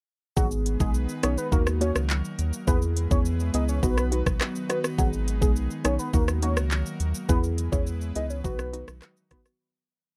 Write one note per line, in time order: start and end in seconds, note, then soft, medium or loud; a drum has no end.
0.36 0.77 G#1 loud
0.36 2.65 D#3 medium
0.36 1.51 G#3 medium
0.36 0.76 B3 loud
0.36 1.51 B3 loud
0.36 0.77 D#4 medium
0.36 0.47 F#4 loud
0.36 0.77 G#4 loud
0.36 kick loud
0.36 shaker medium
0.51 shaker medium
0.66 closed hi-hat medium
0.66 shaker soft
0.80 1.07 B1 medium
0.80 0.97 B3 medium
0.80 0.97 D#4 medium
0.80 0.90 G#4 medium
0.80 0.97 G#4 medium
0.80 kick loud
0.80 shaker medium
0.94 shaker medium
1.09 shaker medium
1.23 1.37 B1 medium
1.23 1.40 B3 medium
1.23 1.40 D#4 medium
1.23 1.40 G#4 medium
1.23 1.33 C#5 medium
1.23 cross-stick loud
1.23 closed hi-hat medium
1.23 shaker medium
1.38 1.47 B4 medium
1.38 shaker medium
1.52 1.92 D#2 loud
1.52 2.67 F#3 medium
1.52 1.78 A#3 medium
1.52 2.67 A#3 medium
1.52 1.79 D#4 medium
1.52 1.79 F#4 loud
1.52 1.62 A#4 medium
1.52 kick medium
1.52 shaker medium
1.67 cross-stick loud
1.67 shaker medium
1.81 1.97 A#3 medium
1.81 1.98 D#4 medium
1.81 1.98 F#4 medium
1.81 1.91 C#5 medium
1.81 closed hi-hat medium
1.81 shaker medium
1.96 2.22 C#2 medium
1.96 cross-stick loud
1.96 shaker medium
2.10 clap loud
2.10 shaker medium
2.25 shaker medium
2.39 2.52 D#2 medium
2.39 closed hi-hat medium
2.39 shaker soft
2.53 shaker medium
2.67 3.07 E2 loud
2.67 3.82 E3 medium
2.67 3.82 G#3 medium
2.67 3.07 B3 medium
2.67 6.10 B3 medium
2.67 3.07 E4 medium
2.67 3.08 G#4 loud
2.67 2.77 B4 loud
2.67 kick loud
2.67 shaker medium
2.82 shaker medium
2.97 closed hi-hat medium
2.97 shaker soft
3.11 3.51 E2 loud
3.11 3.27 B3 medium
3.11 3.28 E4 medium
3.11 3.28 G#4 medium
3.11 3.20 C#5 medium
3.11 kick loud
3.11 shaker medium
3.25 shaker medium
3.40 shaker medium
3.54 3.81 C#2 medium
3.54 3.71 B3 medium
3.54 3.71 E4 medium
3.54 3.71 G#4 medium
3.54 3.64 D#5 medium
3.54 closed hi-hat medium
3.54 shaker medium
3.69 3.78 C#5 medium
3.69 shaker medium
3.83 4.23 B1 loud
3.83 7.26 D#3 medium
3.83 4.97 F#3 medium
3.83 4.09 B3 medium
3.83 4.10 D#4 medium
3.83 4.10 F#4 loud
3.83 4.24 B4 loud
3.83 kick medium
3.83 shaker medium
3.98 cross-stick loud
3.98 shaker medium
4.11 4.28 B3 medium
4.11 4.28 D#4 medium
4.11 4.29 F#4 medium
4.11 closed hi-hat medium
4.11 shaker medium
4.26 4.40 B1 medium
4.26 kick loud
4.26 cross-stick loud
4.26 shaker medium
4.41 cross-stick medium
4.41 clap loud
4.41 shaker medium
4.56 shaker medium
4.69 4.86 B3 medium
4.69 4.86 D#4 medium
4.69 4.86 F#4 medium
4.69 4.79 B4 medium
4.69 cross-stick medium
4.69 closed hi-hat medium
4.69 shaker soft
4.84 cross-stick loud
4.84 shaker medium
4.98 5.43 G#1 loud
4.98 6.13 G#3 medium
4.98 5.38 B3 loud
4.98 5.38 D#4 medium
4.98 5.08 F#4 loud
4.98 5.38 G#4 loud
4.98 kick loud
4.98 shaker medium
5.13 shaker medium
5.28 closed hi-hat medium
5.28 shaker soft
5.41 5.68 B1 medium
5.41 5.58 B3 medium
5.41 5.58 D#4 medium
5.41 5.51 G#4 medium
5.41 5.58 G#4 medium
5.41 kick loud
5.41 shaker medium
5.56 shaker medium
5.70 shaker medium
5.84 5.98 B1 loud
5.84 6.01 B3 medium
5.84 6.01 D#4 medium
5.84 6.02 G#4 medium
5.84 5.95 C#5 medium
5.84 cross-stick loud
5.84 closed hi-hat medium
5.84 shaker medium
5.99 6.09 B4 medium
5.99 shaker medium
6.13 6.58 D#2 loud
6.13 7.28 F#3 medium
6.13 6.40 A#3 loud
6.13 7.28 A#3 medium
6.13 6.40 D#4 medium
6.13 6.40 F#4 loud
6.13 6.23 A#4 medium
6.13 kick medium
6.13 shaker medium
6.28 cross-stick loud
6.28 shaker medium
6.42 6.59 A#3 medium
6.42 6.59 D#4 medium
6.42 6.59 F#4 medium
6.42 6.52 C#5 medium
6.42 closed hi-hat medium
6.42 shaker medium
6.57 6.83 C#2 loud
6.57 cross-stick loud
6.57 shaker medium
6.71 clap medium
6.71 shaker medium
6.86 shaker medium
7.00 7.13 D#2 medium
7.00 closed hi-hat medium
7.00 shaker soft
7.15 shaker medium
7.29 7.69 E2 loud
7.29 8.43 E3 medium
7.29 8.43 G#3 medium
7.29 7.69 B3 loud
7.29 9.57 B3 loud
7.29 7.69 E4 medium
7.29 7.69 G#4 loud
7.29 7.39 B4 loud
7.29 kick loud
7.29 shaker medium
7.44 shaker medium
7.58 closed hi-hat medium
7.58 shaker soft
7.72 8.12 E2 medium
7.72 7.89 B3 medium
7.72 7.89 E4 medium
7.72 7.89 G#4 medium
7.72 7.82 C#5 medium
7.72 kick loud
7.72 shaker medium
7.87 shaker medium
8.01 shaker medium
8.15 8.42 C#2 medium
8.15 8.32 B3 medium
8.15 8.32 E4 medium
8.15 8.33 G#4 medium
8.15 8.25 D#5 medium
8.15 closed hi-hat medium
8.15 shaker medium
8.30 8.40 C#5 medium
8.30 shaker medium
8.44 8.84 B1 loud
8.44 9.59 D#3 medium
8.44 9.59 F#3 medium
8.44 8.71 B3 loud
8.44 8.71 D#4 medium
8.44 8.71 F#4 loud
8.44 8.85 B4 loud
8.44 kick medium
8.44 shaker medium
8.59 cross-stick loud
8.59 shaker medium
8.73 8.90 B3 medium
8.73 8.90 D#4 medium
8.73 8.90 F#4 medium
8.73 closed hi-hat medium
8.73 shaker medium
8.88 9.01 B1 loud
8.88 cross-stick loud
8.88 shaker medium
9.02 cross-stick medium
9.02 clap loud
9.02 shaker medium
9.17 shaker medium
9.31 9.47 B3 medium
9.31 9.48 D#4 medium
9.31 9.48 F#4 medium
9.31 9.41 B4 medium
9.31 kick medium
9.31 cross-stick loud
9.31 closed hi-hat medium
9.31 shaker soft
9.46 cross-stick medium
9.46 shaker medium